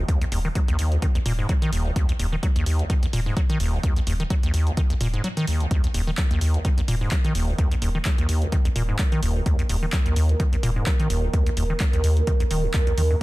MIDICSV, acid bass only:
0, 0, Header, 1, 2, 480
1, 0, Start_track
1, 0, Key_signature, -6, "minor"
1, 0, Tempo, 468750
1, 87, Time_signature, 4, 2, 24, 8
1, 13546, End_track
2, 0, Start_track
2, 0, Title_t, "Acid bass"
2, 0, Program_c, 0, 38
2, 86, Note_on_c, 0, 39, 81
2, 196, Note_off_c, 0, 39, 0
2, 219, Note_on_c, 0, 39, 99
2, 255, Note_off_c, 0, 39, 0
2, 327, Note_on_c, 0, 39, 73
2, 400, Note_off_c, 0, 39, 0
2, 460, Note_on_c, 0, 51, 74
2, 495, Note_off_c, 0, 51, 0
2, 568, Note_on_c, 0, 54, 80
2, 611, Note_off_c, 0, 54, 0
2, 700, Note_on_c, 0, 39, 97
2, 789, Note_off_c, 0, 39, 0
2, 807, Note_on_c, 0, 39, 73
2, 940, Note_on_c, 0, 37, 76
2, 955, Note_off_c, 0, 39, 0
2, 999, Note_off_c, 0, 37, 0
2, 1046, Note_on_c, 0, 51, 86
2, 1091, Note_off_c, 0, 51, 0
2, 1179, Note_on_c, 0, 39, 92
2, 1215, Note_off_c, 0, 39, 0
2, 1287, Note_on_c, 0, 46, 101
2, 1360, Note_off_c, 0, 46, 0
2, 1420, Note_on_c, 0, 44, 76
2, 1508, Note_off_c, 0, 44, 0
2, 1527, Note_on_c, 0, 54, 77
2, 1571, Note_off_c, 0, 54, 0
2, 1659, Note_on_c, 0, 51, 98
2, 1748, Note_off_c, 0, 51, 0
2, 1767, Note_on_c, 0, 39, 73
2, 1899, Note_on_c, 0, 37, 73
2, 1914, Note_off_c, 0, 39, 0
2, 1959, Note_off_c, 0, 37, 0
2, 2007, Note_on_c, 0, 39, 84
2, 2117, Note_off_c, 0, 39, 0
2, 2139, Note_on_c, 0, 39, 106
2, 2175, Note_off_c, 0, 39, 0
2, 2247, Note_on_c, 0, 39, 72
2, 2320, Note_off_c, 0, 39, 0
2, 2380, Note_on_c, 0, 51, 79
2, 2415, Note_off_c, 0, 51, 0
2, 2487, Note_on_c, 0, 54, 78
2, 2531, Note_off_c, 0, 54, 0
2, 2620, Note_on_c, 0, 39, 99
2, 2709, Note_off_c, 0, 39, 0
2, 2728, Note_on_c, 0, 39, 72
2, 2860, Note_on_c, 0, 37, 79
2, 2875, Note_off_c, 0, 39, 0
2, 2919, Note_off_c, 0, 37, 0
2, 2968, Note_on_c, 0, 51, 81
2, 3011, Note_off_c, 0, 51, 0
2, 3100, Note_on_c, 0, 39, 93
2, 3135, Note_off_c, 0, 39, 0
2, 3208, Note_on_c, 0, 46, 95
2, 3280, Note_off_c, 0, 46, 0
2, 3340, Note_on_c, 0, 44, 74
2, 3429, Note_off_c, 0, 44, 0
2, 3447, Note_on_c, 0, 54, 82
2, 3491, Note_off_c, 0, 54, 0
2, 3580, Note_on_c, 0, 51, 104
2, 3668, Note_off_c, 0, 51, 0
2, 3687, Note_on_c, 0, 39, 74
2, 3820, Note_on_c, 0, 37, 74
2, 3835, Note_off_c, 0, 39, 0
2, 3879, Note_off_c, 0, 37, 0
2, 3927, Note_on_c, 0, 39, 82
2, 4037, Note_off_c, 0, 39, 0
2, 4060, Note_on_c, 0, 39, 102
2, 4095, Note_off_c, 0, 39, 0
2, 4167, Note_on_c, 0, 39, 77
2, 4240, Note_off_c, 0, 39, 0
2, 4300, Note_on_c, 0, 51, 75
2, 4335, Note_off_c, 0, 51, 0
2, 4407, Note_on_c, 0, 54, 78
2, 4451, Note_off_c, 0, 54, 0
2, 4539, Note_on_c, 0, 39, 97
2, 4628, Note_off_c, 0, 39, 0
2, 4647, Note_on_c, 0, 39, 70
2, 4780, Note_on_c, 0, 37, 78
2, 4795, Note_off_c, 0, 39, 0
2, 4839, Note_off_c, 0, 37, 0
2, 4887, Note_on_c, 0, 51, 86
2, 4931, Note_off_c, 0, 51, 0
2, 5019, Note_on_c, 0, 39, 97
2, 5055, Note_off_c, 0, 39, 0
2, 5127, Note_on_c, 0, 46, 95
2, 5200, Note_off_c, 0, 46, 0
2, 5259, Note_on_c, 0, 44, 74
2, 5348, Note_off_c, 0, 44, 0
2, 5366, Note_on_c, 0, 54, 81
2, 5411, Note_off_c, 0, 54, 0
2, 5499, Note_on_c, 0, 51, 99
2, 5588, Note_off_c, 0, 51, 0
2, 5607, Note_on_c, 0, 39, 74
2, 5740, Note_on_c, 0, 37, 72
2, 5755, Note_off_c, 0, 39, 0
2, 5799, Note_off_c, 0, 37, 0
2, 5847, Note_on_c, 0, 39, 87
2, 5957, Note_off_c, 0, 39, 0
2, 5980, Note_on_c, 0, 39, 104
2, 6015, Note_off_c, 0, 39, 0
2, 6087, Note_on_c, 0, 39, 72
2, 6160, Note_off_c, 0, 39, 0
2, 6220, Note_on_c, 0, 51, 76
2, 6255, Note_off_c, 0, 51, 0
2, 6326, Note_on_c, 0, 54, 83
2, 6371, Note_off_c, 0, 54, 0
2, 6460, Note_on_c, 0, 39, 100
2, 6548, Note_off_c, 0, 39, 0
2, 6567, Note_on_c, 0, 39, 73
2, 6699, Note_on_c, 0, 37, 78
2, 6714, Note_off_c, 0, 39, 0
2, 6758, Note_off_c, 0, 37, 0
2, 6807, Note_on_c, 0, 51, 84
2, 6851, Note_off_c, 0, 51, 0
2, 6939, Note_on_c, 0, 39, 97
2, 6975, Note_off_c, 0, 39, 0
2, 7047, Note_on_c, 0, 46, 104
2, 7120, Note_off_c, 0, 46, 0
2, 7180, Note_on_c, 0, 44, 75
2, 7268, Note_off_c, 0, 44, 0
2, 7287, Note_on_c, 0, 54, 76
2, 7331, Note_off_c, 0, 54, 0
2, 7419, Note_on_c, 0, 51, 94
2, 7508, Note_off_c, 0, 51, 0
2, 7527, Note_on_c, 0, 39, 70
2, 7660, Note_on_c, 0, 37, 74
2, 7675, Note_off_c, 0, 39, 0
2, 7719, Note_off_c, 0, 37, 0
2, 7767, Note_on_c, 0, 39, 85
2, 7876, Note_off_c, 0, 39, 0
2, 7899, Note_on_c, 0, 39, 101
2, 7935, Note_off_c, 0, 39, 0
2, 8007, Note_on_c, 0, 39, 77
2, 8080, Note_off_c, 0, 39, 0
2, 8140, Note_on_c, 0, 51, 74
2, 8175, Note_off_c, 0, 51, 0
2, 8247, Note_on_c, 0, 54, 77
2, 8291, Note_off_c, 0, 54, 0
2, 8380, Note_on_c, 0, 39, 96
2, 8468, Note_off_c, 0, 39, 0
2, 8487, Note_on_c, 0, 39, 73
2, 8620, Note_on_c, 0, 37, 76
2, 8636, Note_off_c, 0, 39, 0
2, 8679, Note_off_c, 0, 37, 0
2, 8727, Note_on_c, 0, 51, 87
2, 8771, Note_off_c, 0, 51, 0
2, 8860, Note_on_c, 0, 39, 96
2, 8895, Note_off_c, 0, 39, 0
2, 8967, Note_on_c, 0, 46, 103
2, 9040, Note_off_c, 0, 46, 0
2, 9100, Note_on_c, 0, 44, 79
2, 9189, Note_off_c, 0, 44, 0
2, 9208, Note_on_c, 0, 54, 76
2, 9251, Note_off_c, 0, 54, 0
2, 9340, Note_on_c, 0, 51, 104
2, 9429, Note_off_c, 0, 51, 0
2, 9448, Note_on_c, 0, 39, 76
2, 9581, Note_on_c, 0, 37, 72
2, 9596, Note_off_c, 0, 39, 0
2, 9639, Note_off_c, 0, 37, 0
2, 9688, Note_on_c, 0, 39, 82
2, 9797, Note_off_c, 0, 39, 0
2, 9820, Note_on_c, 0, 39, 103
2, 9855, Note_off_c, 0, 39, 0
2, 9928, Note_on_c, 0, 39, 75
2, 10000, Note_off_c, 0, 39, 0
2, 10061, Note_on_c, 0, 51, 77
2, 10096, Note_off_c, 0, 51, 0
2, 10168, Note_on_c, 0, 54, 82
2, 10211, Note_off_c, 0, 54, 0
2, 10300, Note_on_c, 0, 39, 101
2, 10388, Note_off_c, 0, 39, 0
2, 10407, Note_on_c, 0, 39, 71
2, 10540, Note_on_c, 0, 37, 78
2, 10555, Note_off_c, 0, 39, 0
2, 10599, Note_off_c, 0, 37, 0
2, 10647, Note_on_c, 0, 51, 84
2, 10691, Note_off_c, 0, 51, 0
2, 10779, Note_on_c, 0, 39, 97
2, 10815, Note_off_c, 0, 39, 0
2, 10886, Note_on_c, 0, 46, 99
2, 10960, Note_off_c, 0, 46, 0
2, 11020, Note_on_c, 0, 44, 73
2, 11108, Note_off_c, 0, 44, 0
2, 11127, Note_on_c, 0, 54, 79
2, 11171, Note_off_c, 0, 54, 0
2, 11259, Note_on_c, 0, 51, 100
2, 11348, Note_off_c, 0, 51, 0
2, 11367, Note_on_c, 0, 39, 77
2, 11500, Note_on_c, 0, 37, 70
2, 11515, Note_off_c, 0, 39, 0
2, 11559, Note_off_c, 0, 37, 0
2, 11607, Note_on_c, 0, 39, 80
2, 11716, Note_off_c, 0, 39, 0
2, 11739, Note_on_c, 0, 39, 103
2, 11775, Note_off_c, 0, 39, 0
2, 11847, Note_on_c, 0, 39, 76
2, 11920, Note_off_c, 0, 39, 0
2, 11980, Note_on_c, 0, 51, 76
2, 12015, Note_off_c, 0, 51, 0
2, 12087, Note_on_c, 0, 54, 81
2, 12131, Note_off_c, 0, 54, 0
2, 12220, Note_on_c, 0, 39, 97
2, 12308, Note_off_c, 0, 39, 0
2, 12327, Note_on_c, 0, 39, 69
2, 12460, Note_on_c, 0, 37, 80
2, 12475, Note_off_c, 0, 39, 0
2, 12519, Note_off_c, 0, 37, 0
2, 12567, Note_on_c, 0, 51, 84
2, 12611, Note_off_c, 0, 51, 0
2, 12700, Note_on_c, 0, 39, 101
2, 12735, Note_off_c, 0, 39, 0
2, 12807, Note_on_c, 0, 51, 78
2, 12940, Note_on_c, 0, 37, 75
2, 12956, Note_off_c, 0, 51, 0
2, 12976, Note_off_c, 0, 37, 0
2, 13048, Note_on_c, 0, 39, 79
2, 13121, Note_off_c, 0, 39, 0
2, 13180, Note_on_c, 0, 39, 79
2, 13239, Note_off_c, 0, 39, 0
2, 13287, Note_on_c, 0, 51, 74
2, 13331, Note_off_c, 0, 51, 0
2, 13420, Note_on_c, 0, 42, 72
2, 13479, Note_off_c, 0, 42, 0
2, 13546, End_track
0, 0, End_of_file